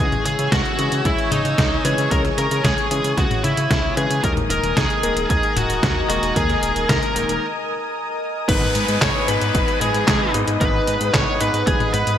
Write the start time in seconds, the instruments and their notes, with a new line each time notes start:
0.00 analog synth bass C#2, electric grand piano E3 G#3 C#4 G#4, lead electric guitar G#4, analog synth pad C#5 G#5 E6
0.12 closed hi-hat, high tom
0.26 analog synth bass C#3, lead electric guitar G#4, closed hi-hat
0.39 analog synth bass C#3, closed hi-hat
0.52 analog synth bass C#2, lead electric guitar F#4, kick, snare, closed hi-hat
0.65 closed hi-hat
0.79 analog synth bass C#3, electric grand piano E3 G#3 C#4 G#4, closed hi-hat
0.92 analog synth bass C#3, closed hi-hat
1.05 analog synth bass C#2, lead electric guitar E4, kick, closed hi-hat
1.19 closed hi-hat
1.32 analog synth bass C#3, lead electric guitar D#4, closed hi-hat, high tom
1.45 analog synth bass C#3, closed hi-hat
1.58 analog synth bass C#2, kick, snare, closed hi-hat
1.85 analog synth bass C#3, electric grand piano E3 G#3 C#4 B4, lead electric guitar G#4, closed hi-hat
1.98 analog synth bass C#3, closed hi-hat
2.11 analog synth bass C#2, electric grand piano E3 G#3 C#4 G#4, lead electric guitar A#4, analog synth pad D#6, kick, closed hi-hat
2.25 snare, closed hi-hat
2.38 analog synth bass C#3, lead electric guitar A#4, closed hi-hat
2.51 analog synth bass C#3, closed hi-hat
2.64 analog synth bass C#2, lead electric guitar G#4, kick, snare, closed hi-hat
2.78 closed hi-hat
2.91 analog synth bass C#3, electric grand piano E3 G#3 C#4 G#4, closed hi-hat
3.04 analog synth bass C#3, closed hi-hat
3.18 analog synth bass C#2, lead electric guitar F#4, kick, closed hi-hat
3.31 closed hi-hat, high tom
3.44 analog synth bass C#3, lead electric guitar E4, closed hi-hat
3.57 analog synth bass C#3, closed hi-hat
3.71 analog synth bass C#2, kick, snare, closed hi-hat
3.97 analog synth bass C#3, electric grand piano E3 G#3 C#4 B4, lead electric guitar G#4, closed hi-hat
4.11 analog synth bass C#3, closed hi-hat
4.24 analog synth bass D#2, electric grand piano D#3 G#3 A#3 D#4 A#4, analog synth pad A#4 D#5 G#5, lead electric guitar A#4, kick, closed hi-hat
4.37 closed hi-hat, high tom
4.50 analog synth bass D#1, lead electric guitar A#4, closed hi-hat
4.64 analog synth bass D#1, closed hi-hat
4.77 analog synth bass D#2, lead electric guitar G#4, kick, snare, closed hi-hat
4.90 closed hi-hat
5.03 analog synth bass D#1, electric grand piano D#3 G#3 A#3 D#4 A#4, closed hi-hat
5.17 analog synth bass D#1, closed hi-hat
5.30 analog synth bass D#2, lead electric guitar G#4, kick, closed hi-hat
5.43 closed hi-hat
5.56 analog synth bass D#1, lead electric guitar F#4, closed hi-hat, high tom
5.70 analog synth bass D#1, closed hi-hat
5.83 analog synth bass D#2, kick, snare, closed hi-hat
6.10 analog synth bass D#1, electric grand piano D#3 G#3 A#3 D#4 D#5, lead electric guitar F#4, closed hi-hat
6.23 analog synth bass D#1, closed hi-hat
6.36 analog synth bass D#2, electric grand piano D#3 G#3 A#3 D#4 A#4, lead electric guitar G#4, kick, closed hi-hat
6.50 snare, closed hi-hat
6.63 analog synth bass D#1, closed hi-hat
6.76 analog synth bass D#1, closed hi-hat
6.89 analog synth bass D#2, lead electric guitar A#4, kick, snare, closed hi-hat
7.03 closed hi-hat
7.16 analog synth bass D#1, electric grand piano D#3 G#3 A#3 D#4 A#4, closed hi-hat
7.29 analog synth bass D#1, closed hi-hat
8.48 analog synth bass G#1, electric grand piano G#2 G#3 B3 D#4 B4, analog synth pad B4 D#5 G#5 D#6, lead electric guitar B4, kick, closed hi-hat, crash, downlifter
8.62 high tom
8.75 analog synth bass G#2, closed hi-hat
8.88 analog synth bass G#2, closed hi-hat
9.02 analog synth bass G#1, lead electric guitar C#5, kick, snare, clap, closed hi-hat
9.28 electric grand piano G#2 G#3 B3 D#4 B4, analog synth bass G#2, lead electric guitar B4, closed hi-hat
9.41 analog synth bass G#2, closed hi-hat
9.55 analog synth bass G#1, kick, closed hi-hat
9.68 closed hi-hat
9.81 analog synth bass G#2, lead electric guitar G#4, closed hi-hat, high tom
9.94 analog synth bass G#2, closed hi-hat
10.08 analog synth bass G#1, kick, snare, clap, closed hi-hat
10.34 electric grand piano G#2 G#3 B3 D#4 D#5, analog synth bass G#2, closed hi-hat
10.48 analog synth bass G#2, closed hi-hat
10.61 analog synth bass G#1, electric grand piano G#2 G#3 B3 D#4 B4, lead electric guitar B4, analog synth pad F#5, kick, closed hi-hat
10.87 analog synth bass G#2, closed hi-hat
11.01 analog synth bass G#2, closed hi-hat
11.14 analog synth bass G#1, lead electric guitar C#5, kick, snare, clap, closed hi-hat
11.41 electric grand piano G#2 G#3 B3 D#4 B4, analog synth bass G#2, lead electric guitar B4, closed hi-hat
11.54 analog synth bass G#2, closed hi-hat
11.67 analog synth bass G#1, lead electric guitar G#4, kick, closed hi-hat
11.80 closed hi-hat, high tom
11.94 analog synth bass G#2, lead electric guitar B4, closed hi-hat
12.07 analog synth bass G#2, closed hi-hat